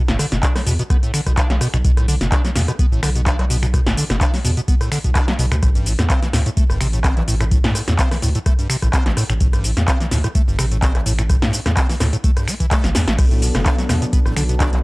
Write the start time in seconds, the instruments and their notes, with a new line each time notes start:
0.08 sub bass F#1, acid bass A2, snare, closed hi-hat, cabasa
0.19 acid bass D3, cross-stick, open hi-hat, cabasa
0.32 sub bass F#1, acid bass B2, snare, closed hi-hat, cabasa
0.43 acid bass D4, kick, clap, closed hi-hat, cabasa
0.56 acid bass F#3, cross-stick, snare, open hi-hat, cabasa
0.67 sub bass E2, acid bass B2, open hi-hat, cabasa
0.79 acid bass B2, closed hi-hat, cabasa
0.90 acid bass B3, kick, cross-stick, closed hi-hat, cabasa
1.03 acid bass A2, closed hi-hat, cabasa
1.14 acid bass D3, finger snap, open hi-hat, cabasa
1.26 sub bass B1, acid bass B2, kick, cross-stick, closed hi-hat, cabasa
1.37 acid bass D4, kick, clap, closed hi-hat, cabasa
1.50 sub bass B1, acid bass F#3, snare, clap, closed hi-hat
1.61 acid bass B2, cross-stick, open hi-hat, cabasa
1.74 sub bass B1, acid bass B2, finger snap, closed hi-hat, cabasa
1.85 sub bass B1, acid bass B2, kick, closed hi-hat, cabasa
1.97 acid bass A2, cross-stick, closed hi-hat, cabasa
2.08 acid bass D3, open hi-hat, cabasa
2.21 sub bass F#1, acid bass B2, snare, closed hi-hat, cabasa
2.32 acid bass D4, kick, cross-stick, clap, closed hi-hat, cabasa
2.45 acid bass F#3, snare, closed hi-hat, cabasa
2.55 sub bass E2, acid bass B2, snare, open hi-hat, cabasa
2.68 acid bass B2, cross-stick, closed hi-hat, cabasa
2.79 acid bass B3, kick, closed hi-hat, cabasa
2.92 sub bass A1, acid bass A2, cabasa
3.03 sub bass B1, acid bass D3, finger snap, cross-stick, open hi-hat, cabasa
3.15 acid bass B2, closed hi-hat, cabasa
3.26 acid bass D4, kick, clap, closed hi-hat, cabasa
3.39 sub bass B1, acid bass F#3, cross-stick, clap, closed hi-hat
3.50 acid bass B2, open hi-hat, cabasa
3.63 acid bass B2, finger snap, closed hi-hat, cabasa
3.74 acid bass B2, kick, cross-stick, closed hi-hat, cabasa
3.86 sub bass F#1, acid bass A2, snare, closed hi-hat, cabasa
3.97 acid bass D3, open hi-hat, cabasa
4.10 sub bass F#1, acid bass B2, cross-stick, snare, closed hi-hat, cabasa
4.21 acid bass D4, kick, clap, closed hi-hat, cabasa
4.33 acid bass F#3, snare, open hi-hat, cabasa
4.44 sub bass E2, acid bass B2, open hi-hat, cabasa
4.57 acid bass B2, closed hi-hat, cabasa
4.68 acid bass B3, kick, closed hi-hat, cabasa
4.81 acid bass A2, cross-stick, closed hi-hat, cabasa
4.92 acid bass D3, finger snap, open hi-hat, cabasa
5.04 sub bass B1, acid bass B2, kick, closed hi-hat, cabasa
5.15 acid bass D4, kick, cross-stick, clap, closed hi-hat, cabasa
5.28 acid bass F#3, snare, clap, closed hi-hat
5.39 sub bass B1, acid bass B2, open hi-hat, cabasa
5.52 sub bass D2, acid bass B2, finger snap, cross-stick, closed hi-hat, cabasa
5.63 sub bass A1, acid bass A2, kick, cross-stick, closed hi-hat, cabasa
5.75 acid bass G2, closed hi-hat, cabasa
5.86 acid bass A2, open hi-hat, cabasa
5.99 sub bass E2, acid bass A2, cross-stick, snare, closed hi-hat, cabasa
6.10 acid bass C4, kick, clap, closed hi-hat, cabasa
6.22 acid bass E3, snare, closed hi-hat, cabasa
6.33 sub bass D2, acid bass A2, cross-stick, snare, open hi-hat, cabasa
6.46 acid bass A2, closed hi-hat, cabasa
6.57 acid bass A3, kick, closed hi-hat, cabasa
6.70 sub bass G1, acid bass G2, cross-stick, cabasa
6.81 sub bass A1, acid bass C3, finger snap, open hi-hat, cabasa
6.93 acid bass A2, closed hi-hat, cabasa
7.04 acid bass C4, kick, cross-stick, clap, closed hi-hat, cabasa
7.17 sub bass A1, acid bass E3, clap, closed hi-hat
7.28 acid bass A2, open hi-hat, cabasa
7.41 acid bass A2, finger snap, cross-stick, closed hi-hat, cabasa
7.51 acid bass A2, kick, closed hi-hat, cabasa
7.64 acid bass G2, sub bass A2, snare, closed hi-hat, cabasa
7.75 acid bass A2, cross-stick, open hi-hat, cabasa
7.88 sub bass E2, acid bass A2, snare, closed hi-hat, cabasa
7.99 acid bass C4, kick, clap, closed hi-hat, cabasa
8.11 acid bass E3, cross-stick, snare, open hi-hat, cabasa
8.22 sub bass D2, acid bass A2, open hi-hat, cabasa
8.35 acid bass A2, closed hi-hat, cabasa
8.46 acid bass A3, kick, cross-stick, closed hi-hat, cabasa
8.59 acid bass G2, closed hi-hat, cabasa
8.70 acid bass C3, finger snap, open hi-hat, cabasa
8.82 sub bass A1, acid bass A2, kick, cross-stick, closed hi-hat, cabasa
8.93 acid bass C4, kick, clap, closed hi-hat, cabasa
9.06 sub bass A1, acid bass E3, snare, clap, closed hi-hat
9.17 acid bass A2, cross-stick, open hi-hat, cabasa
9.30 sub bass A1, acid bass A2, finger snap, closed hi-hat, cabasa
9.40 sub bass A1, acid bass A2, kick, closed hi-hat, cabasa
9.53 acid bass G2, cross-stick, closed hi-hat, cabasa
9.64 acid bass A2, open hi-hat, cabasa
9.77 sub bass E2, acid bass A2, snare, closed hi-hat, cabasa
9.88 acid bass C4, kick, cross-stick, clap, closed hi-hat, cabasa
10.00 acid bass E3, snare, closed hi-hat, cabasa
10.11 sub bass D2, acid bass A2, snare, open hi-hat, cabasa
10.24 acid bass A2, cross-stick, closed hi-hat, cabasa
10.35 acid bass A3, kick, closed hi-hat, cabasa
10.48 sub bass G1, acid bass G2, cabasa
10.59 sub bass A1, acid bass C3, finger snap, cross-stick, open hi-hat, cabasa
10.71 acid bass A2, closed hi-hat, cabasa
10.82 acid bass C4, kick, clap, closed hi-hat, cabasa
10.95 sub bass A1, acid bass E3, cross-stick, clap, closed hi-hat
11.06 acid bass A2, open hi-hat, cabasa
11.19 acid bass A2, finger snap, closed hi-hat, cabasa
11.30 acid bass A2, kick, cross-stick, closed hi-hat, cabasa
11.42 acid bass G2, sub bass A2, snare, closed hi-hat, cabasa
11.53 acid bass A2, open hi-hat, cabasa
11.66 sub bass E2, acid bass A2, cross-stick, snare, closed hi-hat, cabasa
11.77 acid bass C4, kick, clap, closed hi-hat, cabasa
11.89 acid bass E3, snare, open hi-hat, cabasa
12.00 sub bass D2, acid bass A2, cross-stick, snare, open hi-hat, cabasa
12.13 acid bass A2, closed hi-hat, cabasa
12.24 acid bass A3, kick, closed hi-hat, cabasa
12.37 acid bass G2, cross-stick, closed hi-hat, cabasa
12.47 acid bass A3, finger snap, open hi-hat, cabasa
12.60 acid bass E3, kick, closed hi-hat, cabasa
12.71 acid bass A3, kick, cross-stick, clap, closed hi-hat, cabasa
12.84 sub bass G1, acid bass E3, snare, closed hi-hat, cabasa
12.95 sub bass E2, acid bass G2, snare, open hi-hat, cabasa
13.07 sub bass A1, acid bass A3, snare, closed hi-hat, cabasa
13.18 sub bass B1, acid bass B2, analog synth pad F#3 B3 D4 A4, kick, cross-stick, closed hi-hat, crash, cabasa
13.31 acid bass A2, closed hi-hat, cabasa
13.42 acid bass B2, open hi-hat, cabasa
13.55 sub bass F#1, acid bass B2, cross-stick, snare, closed hi-hat, cabasa
13.66 acid bass D4, kick, clap, closed hi-hat, cabasa
13.78 acid bass F#3, snare, closed hi-hat, cabasa
13.89 sub bass E2, acid bass B2, cross-stick, snare, open hi-hat, cabasa
14.02 acid bass B2, closed hi-hat, cabasa
14.13 acid bass B3, kick, closed hi-hat, cabasa
14.26 sub bass A1, acid bass A2, cross-stick, cabasa
14.37 sub bass B1, acid bass D3, finger snap, open hi-hat, cabasa
14.49 acid bass B2, closed hi-hat, cabasa
14.60 acid bass D4, kick, cross-stick, clap, closed hi-hat, cabasa
14.73 sub bass B1, acid bass F#3, clap, closed hi-hat